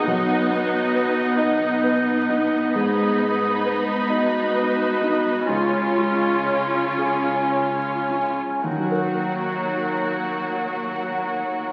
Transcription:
<<
  \new Staff \with { instrumentName = "Violin section" } { \time 6/8 \key ees \minor \tempo 4. = 42 <ees'' ges''>2. | <ees'' ces'''>2. | <des'' aes''>2. | <bes' ges''>2. | }
  \new Staff \with { instrumentName = "Clarinet" } { \time 6/8 \key ees \minor fis'4. dis'4. | aes'4 r8 ges'4. | f'4. des'4. | ees'2. | }
  \new Staff \with { instrumentName = "Grand piano" } { \time 6/8 \key ees \minor b,,8 b8 b'8 dis''8 b'8 dis'8 | aes,8 ces'8 ces''8 ees''8 ces''8 ees'8 | des,8 aes8 des''8 aes'8 des''8 des'8 | <ees, ees ges ges' bes' ges''>2. | }
  \new Staff \with { instrumentName = "Viola section" } { \time 6/8 \key ees \minor << { ees'2. | ees'2. | f'2. | ges'2. | } \\ { b2.~ | b2. | des'2. | ges2. | } >> }
  \new Staff \with { instrumentName = "Cello section" } { \clef bass \time 6/8 \key ees \minor b,2. | aes,2. | des2. | ees,2. | }
>>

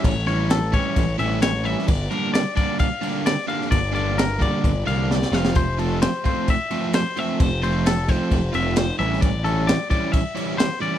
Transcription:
<<
  \new Staff \with { instrumentName = "Clean electric guitar" } { \time 4/4 \key a \phrygian \tempo 4 = 131 cis''8 cis''8 a'8 cis''4 e''8 cis''8 e''8 | d''8 bes'8 d''8 d''8 f''4 d''8 f''8 | d''8 d''8 bes'8 d''4 f''8 d''8 f''8 | c''8 a'8 c''8 c''8 e''4 c''8 e''8 |
c''8 c''8 a'8 c''4 e''8 c''8 e''8 | d''8 a'8 d''8 d''8 e''4 c''8 d''8 | }
  \new Staff \with { instrumentName = "Overdriven electric guitar" } { \time 4/4 \key a \phrygian <e g cis' e'>8 <e g cis' e'>8 r8 <e g cis' e'>8 r8 <e g cis' e'>8 r8 <e g cis' e'>8 | r8 <d g bes d'>8 r8 <d g bes d'>8 r8 <d g bes d'>8 r8 <d g bes d'>8 | r8 <d g bes d'>8 r8 <d g bes d'>8 r8 <d g bes d'>8 r8 <f a c' f'>8 | r8 <f a c' f'>8 r8 <f a c' f'>8 r8 <f a c' f'>8 r8 <f a c' f'>8 |
r8 <f a c' f'>8 r8 <f a c' f'>8 r8 <f a c' f'>8 r8 <e g cis' e'>8 | r8 <e g cis' e'>8 r8 <e g cis' e'>8 r8 <e g cis' e'>8 r8 <e g cis' e'>8 | }
  \new Staff \with { instrumentName = "Picked electric bass" } { \clef bass \time 4/4 \key a \phrygian a,,2 a,,8 a,,4. | g,,8 r2. r8 | g,,2 g,,8 c,4 f,,8~ | f,,4. r2 r8 |
f,,2 f,,8 f,,4 a,,8~ | a,,4. r2 r8 | }
  \new DrumStaff \with { instrumentName = "Drums" } \drummode { \time 4/4 <cymc bd>8 cymc8 <cymc sn>8 <cymc bd>8 <cymc bd>8 cymc8 <cymc sn>16 sn16 cymc16 sn16 | <cymc bd>8 cymc8 <cymc sn>8 <cymc bd>8 <cymc bd>8 cymc8 <cymc sn>16 sn16 cymc16 sn16 | <cymc bd>8 cymc8 <cymc sn>8 <cymc bd>8 <cymc bd>8 cymc8 sn16 sn16 sn16 sn16 | <cymc bd>8 cymc8 <cymc sn>8 <cymc bd>8 <cymc bd>8 cymc8 <cymc sn>8 cymc8 |
<cymc bd>8 cymc8 <cymc sn>8 <cymc bd>8 <cymc bd>8 cymc8 <cymc sn>16 sn16 cymc16 sn16 | <cymc bd>8 cymc8 <cymc sn>8 <cymc bd>8 <cymc bd>8 cymc8 <cymc sn>16 sn16 cymc8 | }
>>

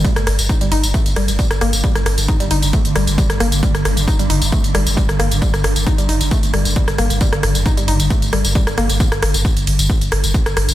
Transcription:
<<
  \new Staff \with { instrumentName = "Synth arpeggio sound" } { \clef bass \time 4/4 \key c \dorian \tempo 4 = 134 g16 r8. ees'16 g16 ees'16 r16 a16 r16 g16 r16 g16 r16 bes16 r16 | g16 r8. ees'16 g16 ees'16 r16 a16 r16 g16 r16 g16 r16 bes16 r16 | g16 r8. ees'16 g16 ees'16 r16 a16 r16 g16 r16 g16 r16 bes16 r16 | g16 r8. ees'16 g16 ees'16 r16 a16 r16 g16 r16 g16 r16 bes16 r16 |
g16 r8. ees'16 g16 ees'16 r16 a16 r16 g16 r16 g16 r16 bes16 r16 | r1 | }
  \new Staff \with { instrumentName = "Synth drone" } { \clef bass \time 4/4 \key c \dorian <g, d>1~ | <g, d>1~ | <g, d>1~ | <g, d>1~ |
<g, d>1~ | <g, d>1 | }
  \new Staff \with { instrumentName = "Sub bass" } { \clef bass \time 4/4 \key c \dorian r16 g,,16 g,,16 g,,16 r16 g,,16 g,,16 g,,16 r16 g,,16 g,,16 g,,16 r16 g,,16 g,,16 g,,16 | r16 g,,16 g,,16 g,,16 r16 g,,16 g,,16 g,,16 r16 g,,16 g,,16 g,,16 r16 g,,16 g,,16 g,,16 | r16 g,,16 g,,16 g,,16 r16 g,,16 g,,16 g,,16 r16 g,,16 g,,16 g,,16 r16 g,,16 g,,16 g,,16 | r16 g,,16 g,,16 g,,16 r16 g,,16 g,,16 g,,16 r16 g,,16 g,,16 g,,16 r16 g,,16 g,,16 g,,16 |
r16 g,,16 g,,16 g,,16 r16 g,,16 g,,16 g,,16 r16 g,,16 g,,16 g,,16 r16 g,,16 g,,16 g,,16 | r16 g,,16 g,,16 g,,16 r16 g,,16 g,,16 g,,16 r16 g,,16 g,,16 g,,16 r16 g,,16 g,,16 g,,16 | }
  \new DrumStaff \with { instrumentName = "Drums" } \drummode { \time 4/4 <hh bd tamb>16 <hh ss tamb>16 <hho cymr ss>16 <hh tamb>16 <hh bd tamb>16 <hh tamb>16 <hho cymr>16 <hh tamb>16 <hh bd>16 <hh tamb>16 <hho cymr ss>16 <hh tamb>16 <hh bd tamb>16 <hh ss tamb>16 <hho cymr ss>16 <hh tamb>16 | <hh bd tamb>16 <hh ss tamb>16 <hho cymr ss>16 <hh tamb>16 <hh bd>16 <hh tamb>16 <hho cymr>16 <hh tamb>16 <hh bd tamb>16 <hh tamb>16 <hho cymr ss>16 <hh tamb>16 <hh bd tamb>16 <hh ss tamb>16 <hho cymr ss>16 <hh tamb>16 | <hh bd tamb>16 <hh ss tamb>16 <hho cymr ss>16 <hh tamb>16 <hh bd tamb>16 <hh tamb>16 <hho cymr>16 <hh tamb>16 <hh bd>16 <hh tamb>16 <hho cymr ss>16 <hh tamb>16 <hh bd tamb>16 <hh ss tamb>16 <hho cymr ss>16 <hh tamb>16 | <hh bd tamb>16 <hh ss tamb>16 <hho cymr ss>16 <hh tamb>16 <hh bd>16 <hh tamb>16 <hho cymr>16 <hh tamb>16 <hh bd tamb>16 <hh tamb>16 <hho cymr ss>16 <hh tamb>16 <hh bd tamb>16 <hh ss tamb>16 <hho cymr ss>16 <hh tamb>16 |
<hh bd tamb>16 <hh ss tamb>16 <hho cymr ss>16 <hh tamb>16 <hh bd tamb>16 <hh tamb>16 <hho cymr>16 <hh tamb>16 <hh bd tamb>16 <hh tamb>16 <hho cymr ss>16 <hh tamb>16 <hh bd>16 <hh ss tamb>16 <hho cymr ss>16 <hh tamb>16 | <hh bd tamb>16 <hh ss tamb>16 <hho cymr ss>16 <hh tamb>16 <hh bd>16 <hh tamb>16 <hho cymr>16 <hh tamb>16 <hh bd tamb>16 <hh tamb>16 <hho cymr ss>16 <hh tamb>16 <hh bd tamb>16 <hh ss tamb>16 <hho cymr ss>16 <hh tamb>16 | }
>>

